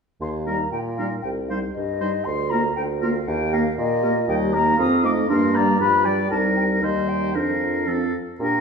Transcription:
0.20 0.64 D#2 soft
0.20 0.27 C6 soft
0.45 0.57 G3 soft
0.45 0.56 D#4 soft
0.45 0.56 A#4 soft
0.45 0.71 A#5 soft
0.71 1.15 A#2 soft
0.71 0.77 G5 soft
0.96 1.08 G3 soft
0.96 1.08 D#4 soft
0.96 1.08 A#4 soft
0.96 1.02 F5 soft
1.22 1.67 C2 soft
1.22 1.28 G5 soft
1.48 1.59 G3 soft
1.48 1.59 D#4 soft
1.48 1.59 C5 soft
1.48 1.54 F5 soft
1.73 2.18 G2 soft
1.73 2.26 D#5 medium
2.01 2.10 G3 soft
2.01 2.10 D#4 soft
2.01 2.10 C5 soft
2.24 2.69 D2 soft
2.24 2.51 C6 medium
2.50 2.61 A#3 soft
2.50 2.61 F4 soft
2.50 2.61 A#4 soft
2.50 2.75 A#5 medium
2.75 3.20 D2 soft
2.75 2.81 G5 medium
3.02 3.12 A#3 soft
3.02 3.12 F4 soft
3.02 3.11 A#4 soft
3.02 3.29 F5 soft
3.27 3.70 D#2 medium
3.27 3.55 G5 medium
3.52 3.63 A#3 soft
3.52 3.61 G4 soft
3.52 3.62 A#4 soft
3.52 3.77 F5 medium
3.78 4.20 A#2 soft
3.78 4.27 D#5 medium
4.02 4.13 A#3 soft
4.02 4.12 G4 soft
4.02 4.13 A#4 soft
4.27 4.73 D#2 medium
4.27 4.56 G3 soft
4.27 4.54 G4 soft
4.27 4.55 D#5 soft
4.27 4.34 G5 medium
4.52 4.79 A#3 soft
4.52 4.78 D#4 soft
4.52 4.78 A#4 soft
4.52 4.78 A#5 medium
4.78 5.24 F2 soft
4.78 5.06 C4 soft
4.78 5.05 F4 soft
4.78 5.06 F5 soft
4.78 5.04 D#6 medium
5.03 5.29 A3 soft
5.03 5.28 D#4 soft
5.03 5.28 D#5 soft
5.03 5.10 D6 medium
5.28 5.75 G2 medium
5.28 5.57 A#3 soft
5.28 5.55 D4 soft
5.28 5.57 A#4 soft
5.28 5.56 C6 medium
5.54 5.80 G3 soft
5.54 5.78 A#3 soft
5.54 5.80 D5 soft
5.54 5.79 A#5 medium
5.79 6.25 G2 soft
5.79 6.08 F3 soft
5.79 6.07 F4 soft
5.79 6.06 B4 soft
5.79 6.06 B5 medium
6.04 6.30 G3 soft
6.04 6.31 G4 soft
6.04 6.30 D5 soft
6.04 6.30 G5 medium
6.30 6.84 C2 soft
6.30 6.79 G3 soft
6.30 6.79 D#4 soft
6.30 6.85 A#4 soft
6.30 6.36 A5 medium
6.56 6.62 G5 soft
6.82 7.36 D#2 soft
6.82 7.37 G3 soft
6.82 7.36 D#4 soft
6.82 7.36 C5 soft
6.82 7.09 D#5 soft
7.08 7.34 G5 soft
7.34 8.14 F2 soft
7.34 7.87 F3 soft
7.34 7.89 D4 soft
7.34 7.89 A#4 soft
7.34 8.13 F5 soft
7.87 8.14 F3 soft
7.87 8.14 C4 soft
7.87 8.15 A4 soft
8.40 8.61 A#2 soft
8.40 8.61 D4 soft
8.40 8.61 G4 soft
8.40 8.61 A#4 soft
8.40 8.61 A#5 soft

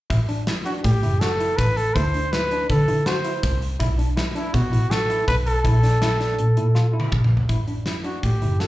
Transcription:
0.10 0.25 A1 medium
0.10 0.19 E4 medium
0.10 kick medium
0.10 closed hi-hat medium
0.29 0.38 D4 medium
0.29 closed hi-hat medium
0.47 0.57 E4 medium
0.47 snare loud
0.47 closed hi-hat medium
0.66 0.85 D4 medium
0.66 0.74 F#4 medium
0.66 closed hi-hat medium
0.84 0.99 A2 loud
0.84 1.22 G4 medium
0.84 kick medium
0.84 closed hi-hat medium
1.02 1.46 F#1 medium
1.02 1.12 E4 medium
1.02 closed hi-hat medium
1.20 1.31 F#4 medium
1.20 1.58 A4 medium
1.20 snare medium
1.20 closed hi-hat medium
1.40 1.59 E4 medium
1.40 closed hi-hat medium
1.57 1.73 A1 medium
1.57 1.78 B4 medium
1.57 kick loud
1.57 closed hi-hat medium
1.77 1.96 A4 medium
1.77 closed hi-hat medium
1.95 2.69 D2 medium
1.95 2.05 E4 medium
1.95 2.34 C5 loud
1.95 kick medium
1.95 closed hi-hat medium
2.14 2.24 D4 medium
2.14 closed hi-hat medium
2.32 2.42 E4 medium
2.32 2.69 B4 medium
2.32 snare loud
2.32 closed hi-hat medium
2.51 2.70 D4 medium
2.51 closed hi-hat medium
2.70 2.84 D3 medium
2.70 3.08 A4 medium
2.70 kick loud
2.70 closed hi-hat medium
2.88 3.32 D3 medium
2.88 2.97 E4 medium
2.88 closed hi-hat medium
3.06 3.16 F#4 medium
3.06 3.62 C5 medium
3.06 snare loud
3.06 closed hi-hat medium
3.25 3.43 E4 medium
3.25 closed hi-hat medium
3.43 3.72 C2 medium
3.43 kick loud
3.43 closed hi-hat medium
3.62 closed hi-hat medium
3.80 3.95 B1 medium
3.80 3.89 E4 medium
3.80 kick loud
3.80 closed hi-hat medium
3.98 4.08 D4 medium
3.98 closed hi-hat medium
4.17 4.26 E4 medium
4.17 snare loud
4.17 closed hi-hat medium
4.35 4.54 D4 medium
4.35 4.56 E4 medium
4.35 closed hi-hat medium
4.54 4.69 B2 loud
4.54 4.92 F#4 medium
4.54 kick loud
4.54 closed hi-hat medium
4.71 5.15 A1 medium
4.71 4.81 E4 medium
4.71 closed hi-hat medium
4.91 5.00 F#4 medium
4.91 5.27 A4 loud
4.91 snare loud
4.91 closed hi-hat medium
5.10 5.28 E4 medium
5.10 closed hi-hat medium
5.28 5.42 B1 medium
5.28 5.36 B4 loud
5.28 kick loud
5.28 closed hi-hat medium
5.46 7.09 A4 loud
5.46 closed hi-hat medium
5.64 6.38 A#1 loud
5.64 5.74 E4 medium
5.64 kick loud
5.64 closed hi-hat medium
5.83 5.92 D4 medium
5.83 snare soft
5.83 closed hi-hat medium
6.01 6.11 E4 medium
6.01 snare loud
6.01 closed hi-hat medium
6.20 6.39 D4 medium
6.20 snare soft
6.20 closed hi-hat soft
6.39 6.53 A#2 medium
6.39 closed hi-hat medium
6.57 7.01 A#2 medium
6.57 6.66 E4 medium
6.57 closed hi-hat medium
6.75 6.84 F4 medium
6.75 snare medium
6.93 7.12 E4 medium
7.00 high tom medium
7.12 7.41 A#1 medium
7.12 kick loud
7.12 mid tom medium
7.24 mid tom medium
7.37 floor tom medium
7.49 7.64 A1 medium
7.49 7.58 E4 medium
7.49 kick medium
7.49 closed hi-hat medium
7.67 7.77 D4 medium
7.67 closed hi-hat soft
7.86 7.95 E4 medium
7.86 snare loud
7.86 closed hi-hat medium
8.04 8.23 D4 medium
8.04 8.25 F#4 medium
8.04 closed hi-hat soft
8.23 8.38 A2 medium
8.23 8.61 G4 medium
8.23 kick medium
8.23 closed hi-hat medium
8.42 8.67 F#1 medium
8.42 8.51 E4 medium
8.42 closed hi-hat medium
8.60 8.67 F#4 medium
8.60 8.67 A4 medium
8.60 snare medium
8.60 closed hi-hat medium

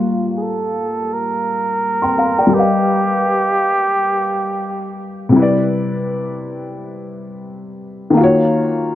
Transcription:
0.00 2.45 G3 medium
0.00 2.50 A#3 medium
0.00 0.32 F4 medium
0.00 2.48 F4 medium
0.00 2.47 G4 soft
0.00 1.81 F5 medium
0.37 0.43 G#4 medium
0.42 1.15 A4 loud
1.13 2.56 A#4 loud
2.02 2.17 G5 soft
2.02 2.16 C6 medium
2.18 2.38 F5 medium
2.18 2.37 A#5 medium
2.39 2.72 D5 soft
2.39 2.72 G5 medium
2.47 5.28 G3 medium
2.47 5.29 G4 medium
2.52 5.00 G4 medium
2.52 5.30 A#4 medium
2.52 5.32 B4 medium
2.57 5.33 D#5 medium
2.57 5.34 F5 medium
5.29 8.10 C3 medium
5.29 8.12 G3 medium
5.36 8.13 E4 medium
5.36 8.15 B4 medium
5.42 8.16 D5 medium
8.10 8.95 D#3 medium
8.10 8.95 A#3 medium
8.17 8.95 F4 medium
8.17 8.95 F#4 medium
8.24 8.95 C#5 medium

